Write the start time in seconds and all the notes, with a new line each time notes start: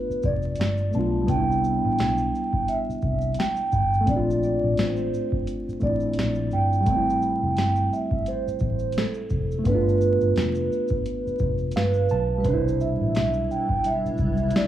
Already playing: A3 B3 D4 F4 B4
0.10 muted fingered electric bass stroke, shaker
0.23 F1 D5, kick, shaker
0.42 shaker
0.56 G1, closed hi-hat, shaker
0.61 snare
0.78 shaker
0.91 B1 A3 B3 A5, shaker
0.96 D4 F4
1.22 G3
1.27 C2 B3 G5, kick, closed hi-hat, shaker
1.32 D4
1.37 E4
1.52 shaker
1.64 shaker
1.84 A1
1.99 B1, snare, closed hi-hat, shaker
2.18 shaker
2.35 shaker
2.53 kick
2.68 E5, closed hi-hat, shaker
2.89 muted fingered electric bass stroke, shaker
3.02 C2, kick, shaker
3.21 shaker
3.34 closed hi-hat, shaker
3.39 G5, snare
3.56 shaker
3.72 G1, kick, shaker
3.94 shaker
4.01 A3
4.06 A#1 C4 D5, kick, closed hi-hat, shaker
4.11 D4
4.16 F4
4.31 shaker
4.43 D5, shaker
4.64 A#1
4.77 A1 C5, snare, closed hi-hat, shaker
4.96 shaker
5.14 shaker
5.32 kick
5.47 closed hi-hat, shaker
5.68 muted fingered electric bass stroke, shaker
5.80 A1 A3 C4 D5, kick, shaker
5.85 D4 E4
6.00 shaker
6.13 closed hi-hat, shaker
6.18 A#1, snare
6.35 shaker
6.51 G1 G5, shaker
6.73 shaker
6.81 G3
6.86 A1 A3, kick, closed hi-hat, shaker
6.91 C4
6.96 E4
7.10 shaker
7.22 shaker
7.43 F1
7.57 G1, snare, closed hi-hat, shaker
7.76 shaker
7.93 E5, shaker
8.11 kick
8.26 C5, closed hi-hat, shaker
8.48 muted fingered electric bass stroke, shaker
8.59 A1, kick, shaker
8.79 shaker
8.92 closed hi-hat, shaker
8.98 A4, snare
9.14 shaker
9.30 F1, kick, shaker
9.52 shaker
9.59 A3
9.64 G1 B3 B4, kick, closed hi-hat, shaker
9.69 D4
9.75 F4
9.89 shaker
10.01 shaker
10.21 G1, shaker
10.36 F1, snare, closed hi-hat, shaker
10.55 shaker
10.72 shaker
10.88 kick, shaker
11.06 closed hi-hat, shaker
11.27 muted fingered electric bass stroke, shaker
11.39 F1, kick, shaker
11.58 shaker
11.72 closed hi-hat, shaker
11.76 G1 B4 F5, snare
11.94 shaker
12.09 B1 A5, shaker
12.38 G3 B4
12.43 C2 B2 G3 D4 E4 C5, kick, closed hi-hat, shaker
12.48 D4
12.54 E4
12.68 shaker
12.80 E5, shaker
13.01 A1
13.15 B1 E5, snare, closed hi-hat, shaker
13.34 shaker
13.51 G5, shaker
13.69 kick
13.84 E5, closed hi-hat, shaker
14.06 muted fingered electric bass stroke, shaker
14.18 C2, kick, shaker
14.37 shaker
14.50 closed hi-hat, shaker
14.56 D5, snare